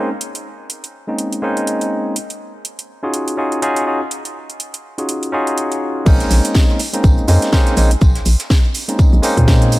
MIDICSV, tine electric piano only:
0, 0, Header, 1, 2, 480
1, 0, Start_track
1, 0, Key_signature, -5, "minor"
1, 0, Tempo, 487805
1, 206, Time_signature, 4, 2, 24, 8
1, 9635, End_track
2, 0, Start_track
2, 0, Title_t, "Tine electric piano"
2, 0, Program_c, 0, 4
2, 1059, Note_on_c, 0, 56, 69
2, 1061, Note_on_c, 0, 58, 62
2, 1064, Note_on_c, 0, 60, 63
2, 1066, Note_on_c, 0, 61, 61
2, 1069, Note_on_c, 0, 63, 76
2, 1379, Note_off_c, 0, 56, 0
2, 1380, Note_off_c, 0, 58, 0
2, 1381, Note_off_c, 0, 60, 0
2, 1383, Note_off_c, 0, 61, 0
2, 1384, Note_off_c, 0, 63, 0
2, 1396, Note_on_c, 0, 56, 92
2, 1401, Note_on_c, 0, 58, 84
2, 1406, Note_on_c, 0, 60, 85
2, 1411, Note_on_c, 0, 61, 85
2, 1416, Note_on_c, 0, 63, 103
2, 2109, Note_off_c, 0, 56, 0
2, 2111, Note_off_c, 0, 58, 0
2, 2114, Note_off_c, 0, 60, 0
2, 2116, Note_off_c, 0, 61, 0
2, 2119, Note_off_c, 0, 63, 0
2, 2979, Note_on_c, 0, 61, 81
2, 2982, Note_on_c, 0, 63, 74
2, 2984, Note_on_c, 0, 65, 76
2, 2987, Note_on_c, 0, 66, 73
2, 2989, Note_on_c, 0, 68, 89
2, 3299, Note_off_c, 0, 61, 0
2, 3300, Note_off_c, 0, 63, 0
2, 3302, Note_off_c, 0, 65, 0
2, 3303, Note_off_c, 0, 66, 0
2, 3304, Note_off_c, 0, 68, 0
2, 3320, Note_on_c, 0, 61, 80
2, 3323, Note_on_c, 0, 63, 73
2, 3326, Note_on_c, 0, 65, 74
2, 3328, Note_on_c, 0, 66, 70
2, 3331, Note_on_c, 0, 68, 88
2, 3539, Note_off_c, 0, 61, 0
2, 3540, Note_off_c, 0, 63, 0
2, 3542, Note_off_c, 0, 65, 0
2, 3543, Note_off_c, 0, 66, 0
2, 3544, Note_off_c, 0, 68, 0
2, 3561, Note_on_c, 0, 61, 92
2, 3563, Note_on_c, 0, 63, 85
2, 3566, Note_on_c, 0, 65, 85
2, 3568, Note_on_c, 0, 66, 85
2, 3571, Note_on_c, 0, 68, 105
2, 3779, Note_off_c, 0, 61, 0
2, 3780, Note_off_c, 0, 63, 0
2, 3782, Note_off_c, 0, 65, 0
2, 3783, Note_off_c, 0, 66, 0
2, 3784, Note_off_c, 0, 68, 0
2, 3801, Note_on_c, 0, 61, 68
2, 3804, Note_on_c, 0, 63, 61
2, 3807, Note_on_c, 0, 65, 63
2, 3809, Note_on_c, 0, 66, 64
2, 3812, Note_on_c, 0, 68, 76
2, 3927, Note_off_c, 0, 61, 0
2, 3928, Note_off_c, 0, 63, 0
2, 3929, Note_off_c, 0, 65, 0
2, 3930, Note_off_c, 0, 66, 0
2, 3932, Note_off_c, 0, 68, 0
2, 4899, Note_on_c, 0, 61, 67
2, 4901, Note_on_c, 0, 63, 62
2, 4904, Note_on_c, 0, 65, 64
2, 4906, Note_on_c, 0, 66, 63
2, 4909, Note_on_c, 0, 68, 77
2, 5219, Note_off_c, 0, 61, 0
2, 5220, Note_off_c, 0, 63, 0
2, 5222, Note_off_c, 0, 65, 0
2, 5223, Note_off_c, 0, 66, 0
2, 5224, Note_off_c, 0, 68, 0
2, 5235, Note_on_c, 0, 61, 95
2, 5241, Note_on_c, 0, 63, 86
2, 5246, Note_on_c, 0, 65, 84
2, 5251, Note_on_c, 0, 66, 86
2, 5256, Note_on_c, 0, 68, 101
2, 5948, Note_off_c, 0, 61, 0
2, 5951, Note_off_c, 0, 63, 0
2, 5954, Note_off_c, 0, 65, 0
2, 5956, Note_off_c, 0, 66, 0
2, 5956, Note_on_c, 0, 56, 98
2, 5959, Note_off_c, 0, 68, 0
2, 5960, Note_on_c, 0, 58, 90
2, 5966, Note_on_c, 0, 60, 89
2, 5971, Note_on_c, 0, 61, 92
2, 5976, Note_on_c, 0, 63, 106
2, 6681, Note_off_c, 0, 56, 0
2, 6683, Note_off_c, 0, 58, 0
2, 6686, Note_off_c, 0, 60, 0
2, 6689, Note_off_c, 0, 61, 0
2, 6691, Note_off_c, 0, 63, 0
2, 6820, Note_on_c, 0, 56, 84
2, 6822, Note_on_c, 0, 58, 82
2, 6825, Note_on_c, 0, 60, 79
2, 6828, Note_on_c, 0, 61, 78
2, 6830, Note_on_c, 0, 63, 97
2, 7139, Note_off_c, 0, 56, 0
2, 7141, Note_off_c, 0, 58, 0
2, 7142, Note_off_c, 0, 60, 0
2, 7143, Note_off_c, 0, 61, 0
2, 7145, Note_off_c, 0, 63, 0
2, 7162, Note_on_c, 0, 56, 85
2, 7164, Note_on_c, 0, 58, 77
2, 7167, Note_on_c, 0, 60, 76
2, 7170, Note_on_c, 0, 61, 75
2, 7172, Note_on_c, 0, 63, 93
2, 7379, Note_off_c, 0, 56, 0
2, 7381, Note_off_c, 0, 58, 0
2, 7382, Note_off_c, 0, 60, 0
2, 7383, Note_off_c, 0, 61, 0
2, 7385, Note_off_c, 0, 63, 0
2, 7402, Note_on_c, 0, 56, 96
2, 7404, Note_on_c, 0, 58, 89
2, 7407, Note_on_c, 0, 60, 90
2, 7409, Note_on_c, 0, 61, 90
2, 7412, Note_on_c, 0, 63, 111
2, 7619, Note_off_c, 0, 56, 0
2, 7620, Note_off_c, 0, 58, 0
2, 7622, Note_off_c, 0, 60, 0
2, 7623, Note_off_c, 0, 61, 0
2, 7624, Note_off_c, 0, 63, 0
2, 7642, Note_on_c, 0, 56, 72
2, 7645, Note_on_c, 0, 58, 69
2, 7648, Note_on_c, 0, 60, 69
2, 7650, Note_on_c, 0, 61, 68
2, 7653, Note_on_c, 0, 63, 81
2, 7767, Note_off_c, 0, 56, 0
2, 7768, Note_off_c, 0, 58, 0
2, 7770, Note_off_c, 0, 60, 0
2, 7771, Note_off_c, 0, 61, 0
2, 7773, Note_off_c, 0, 63, 0
2, 8740, Note_on_c, 0, 56, 72
2, 8742, Note_on_c, 0, 58, 67
2, 8745, Note_on_c, 0, 60, 67
2, 8748, Note_on_c, 0, 61, 66
2, 8751, Note_on_c, 0, 63, 81
2, 9059, Note_off_c, 0, 56, 0
2, 9060, Note_off_c, 0, 58, 0
2, 9062, Note_off_c, 0, 60, 0
2, 9063, Note_off_c, 0, 61, 0
2, 9065, Note_off_c, 0, 63, 0
2, 9075, Note_on_c, 0, 56, 101
2, 9081, Note_on_c, 0, 58, 92
2, 9086, Note_on_c, 0, 60, 92
2, 9091, Note_on_c, 0, 61, 90
2, 9096, Note_on_c, 0, 63, 111
2, 9635, Note_off_c, 0, 56, 0
2, 9635, Note_off_c, 0, 58, 0
2, 9635, Note_off_c, 0, 60, 0
2, 9635, Note_off_c, 0, 61, 0
2, 9635, Note_off_c, 0, 63, 0
2, 9635, End_track
0, 0, End_of_file